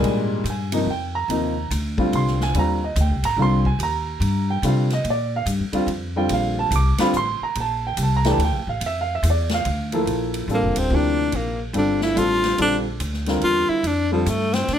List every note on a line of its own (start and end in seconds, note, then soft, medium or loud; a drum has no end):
0.00 0.43 G#2 medium
0.00 0.42 A#2 medium
0.00 0.42 D#3 medium
0.00 0.43 G3 medium
0.00 0.43 G#3 medium
0.00 0.43 D4 medium
0.00 0.42 G#5 medium
0.00 ride medium
0.44 0.85 G2 medium
0.44 hi-hat pedal medium
0.44 ride medium
0.50 0.86 G#5 medium
0.72 0.85 C3 medium
0.72 0.86 F3 medium
0.72 0.86 A#3 medium
0.72 0.86 D#4 medium
0.72 ride medium
0.86 1.27 F2 medium
0.90 1.15 G5 medium
1.15 1.67 A#5 medium
1.28 1.69 D#2 medium
1.28 1.53 C3 medium
1.28 1.53 F3 medium
1.28 1.54 A#3 medium
1.28 1.54 D#4 medium
1.28 ride medium
1.71 2.11 D2 loud
1.71 hi-hat pedal medium
1.71 ride medium
1.98 2.51 D3 medium
1.98 2.51 G3 medium
1.98 2.52 C4 medium
1.98 2.52 F4 medium
1.98 kick medium
2.12 2.53 C2 medium
2.12 2.40 C6 medium
2.12 ride medium
2.27 snare soft
2.41 2.55 G#5 medium
2.41 snare soft
2.54 2.94 D#2 medium
2.54 2.79 D3 medium
2.54 2.79 G3 medium
2.54 2.79 C4 medium
2.54 2.79 F4 medium
2.54 ride medium
2.59 2.83 A#5 medium
2.84 2.97 D#5 medium
2.96 3.12 D2 loud
2.96 hi-hat pedal medium
2.96 ride medium
3.01 3.24 G5 medium
3.10 3.22 C2 medium
3.22 3.36 G#1 medium
3.22 3.38 A#5 loud
3.22 ride medium
3.37 3.78 C2 medium
3.37 3.62 D3 medium
3.37 3.62 G3 medium
3.37 3.63 C4 medium
3.37 3.63 F4 medium
3.42 3.66 C6 loud
3.65 3.80 G#5 medium
3.65 kick soft
3.79 4.20 D#2 medium
3.79 ride medium
3.83 4.46 A#5 medium
4.20 4.61 G2 loud
4.20 ride medium
4.50 4.64 G5 medium
4.62 5.03 C3 medium
4.62 4.87 D3 medium
4.62 4.88 G3 medium
4.62 4.88 C4 medium
4.62 4.88 F4 medium
4.62 hi-hat pedal soft
4.62 ride medium
4.68 4.91 F5 medium
4.90 5.06 D#5 medium
4.90 snare soft
4.90 ride soft
5.04 5.45 A#2 medium
5.04 ride medium
5.10 5.34 D5 medium
5.36 5.44 F5 medium
5.46 5.61 G2 medium
5.46 hi-hat pedal medium
5.46 ride medium
5.60 5.72 F2 medium
5.72 5.86 D2 medium
5.72 5.86 D3 medium
5.72 5.87 G3 medium
5.72 5.87 C4 medium
5.72 5.87 F4 medium
5.72 ride medium
5.86 6.28 F2 medium
5.86 ride medium
6.16 6.69 D3 medium
6.16 6.70 G3 medium
6.16 6.70 C4 medium
6.16 6.70 F4 medium
6.16 6.31 G5 medium
6.29 6.70 A#1 medium
6.29 ride medium
6.33 6.58 F5 medium
6.59 6.73 A5 medium
6.71 6.96 C2 loud
6.71 hi-hat pedal medium
6.71 ride medium
6.76 7.00 D6 medium
6.98 7.12 D3 medium
6.98 7.13 G3 medium
6.98 7.13 C4 medium
6.98 7.13 F4 loud
6.98 7.14 B5 loud
6.98 snare medium
6.98 ride medium
7.13 7.39 A1 medium
7.13 7.42 C6 loud
7.13 hi-hat pedal medium
7.41 7.57 A#5 medium
7.41 muted upright bass stroke soft
7.55 7.96 A#1 medium
7.55 ride medium
7.60 7.84 A5 medium
7.87 7.99 G5 medium
7.97 8.37 C2 medium
7.97 hi-hat pedal medium
7.97 ride medium
8.03 8.14 A5 medium
8.17 8.28 A#5 medium
8.25 8.38 E3 medium
8.25 8.39 A3 medium
8.25 8.39 D4 medium
8.25 8.39 G4 medium
8.25 snare medium
8.25 ride medium
8.30 8.41 A5 medium
8.38 8.52 D2 medium
8.38 ride medium
8.44 8.68 G5 medium
8.52 8.67 A#1 medium
8.67 8.80 A1 medium
8.67 8.82 F5 medium
8.80 9.22 F2 medium
8.80 ride medium
8.86 8.97 E5 medium
9.01 9.12 F5 loud
9.15 9.26 E5 medium
9.23 9.64 E2 loud
9.23 hi-hat pedal medium
9.23 ride medium
9.30 9.53 D5 medium
9.49 snare medium
9.49 ride medium
9.54 9.98 F5 loud
9.65 10.05 D2 medium
9.65 ride medium
9.92 10.46 F3 medium
9.92 10.46 A#3 medium
9.92 10.47 E4 medium
9.92 10.47 A4 medium
9.92 ride medium
10.06 10.47 A#1 medium
10.06 ride medium
10.34 ride medium
10.48 10.64 A1 medium
10.48 10.89 D3 medium
10.48 10.90 G3 medium
10.48 10.90 C4 soft
10.48 10.90 F4 medium
10.48 10.90 A4 medium
10.48 hi-hat pedal soft
10.54 10.80 A#3 medium
10.63 10.76 F1 medium
10.76 10.90 D1 medium
10.76 10.96 C4 medium
10.76 ride medium
10.90 11.31 D2 medium
10.90 11.54 C3 medium
10.90 11.54 F3 medium
10.90 11.55 A#3 medium
10.90 11.55 E4 soft
10.90 11.55 G4 medium
10.95 11.37 D4 medium
11.32 11.73 A#1 medium
11.32 11.61 A#3 medium
11.32 ride medium
11.73 12.15 G1 medium
11.73 12.14 D3 medium
11.73 12.14 G3 medium
11.73 12.15 C4 medium
11.73 12.15 F4 medium
11.73 12.15 A4 medium
11.73 ride medium
11.78 12.02 D4 medium
12.01 12.20 E4 medium
12.01 snare soft
12.15 12.57 A1 medium
12.15 12.56 D3 medium
12.15 12.57 G3 medium
12.15 12.57 C4 medium
12.15 12.58 F4 medium
12.15 12.60 F4 loud
12.15 12.58 A4 medium
12.15 hi-hat pedal medium
12.15 ride medium
12.44 snare medium
12.44 ride medium
12.58 12.99 A#1 medium
12.58 12.82 D3 medium
12.58 12.83 G3 medium
12.58 12.83 C4 medium
12.58 12.83 F4 medium
12.58 12.83 A4 medium
12.58 ride medium
12.62 12.77 D4 medium
13.00 13.41 D2 medium
13.00 hi-hat pedal medium
13.00 ride medium
13.14 snare soft
13.26 13.81 D3 medium
13.26 13.82 G3 medium
13.26 13.82 C4 medium
13.26 13.82 F4 medium
13.26 13.82 A#4 medium
13.26 snare medium
13.26 ride soft
13.41 13.68 E2 medium
13.41 13.71 F4 medium
13.41 ride medium
13.69 13.89 E4 medium
13.69 muted upright bass stroke soft
13.83 14.25 F2 medium
13.83 ride medium
13.87 14.12 D4 medium
14.11 14.25 D3 medium
14.11 14.31 F3 medium
14.11 14.25 G3 medium
14.11 14.25 C4 medium
14.11 14.26 F4 medium
14.11 14.26 A4 medium
14.26 14.67 G2 medium
14.26 14.56 A3 medium
14.26 hi-hat pedal medium
14.26 ride medium
14.53 14.75 C4 medium
14.53 snare medium
14.53 ride medium
14.68 14.79 A2 medium
14.68 snare soft
14.68 ride medium
14.73 14.79 D4 loud